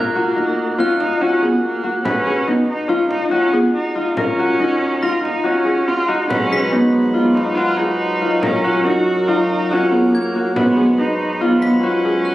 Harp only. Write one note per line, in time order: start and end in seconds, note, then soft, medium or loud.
0.00 0.36 D#4 medium
0.00 0.21 F4 medium
0.00 1.41 G#4 medium
0.00 2.11 A#4 medium
0.15 0.84 F#4 medium
0.36 2.47 D#4 medium
0.78 1.27 F4 medium
1.21 1.83 F#4 medium
1.42 2.26 G#4 medium
1.83 2.95 F#4 medium
2.05 4.10 B4 medium
2.26 3.53 G#4 medium
2.47 4.59 D#4 medium
2.89 3.37 F4 medium
3.31 4.01 F#4 medium
3.53 5.65 G#4 medium
3.95 4.45 F4 medium
4.17 6.29 A#4 medium
4.39 5.08 F#4 medium
4.59 6.72 D#4 medium
5.02 5.50 F4 medium
5.44 6.08 F#4 medium
5.65 6.51 G#4 medium
6.08 7.20 F#4 medium
6.30 8.34 B4 medium
6.51 7.78 G#4 medium
6.72 8.86 D#4 medium
7.14 7.63 F4 medium
7.57 8.27 F#4 medium
7.78 9.92 G#4 medium
8.21 8.70 F4 medium
8.43 10.55 A#4 medium
8.64 9.34 F#4 medium
8.86 10.97 D#4 medium
9.28 9.77 F4 medium
9.71 10.35 F#4 medium
9.92 10.76 G#4 medium
10.35 11.47 F#4 medium
10.56 12.35 B4 medium
10.77 12.04 G#4 medium
10.98 12.35 D#4 medium
11.41 11.89 F4 medium
11.83 12.35 F#4 medium
12.05 12.35 G#4 medium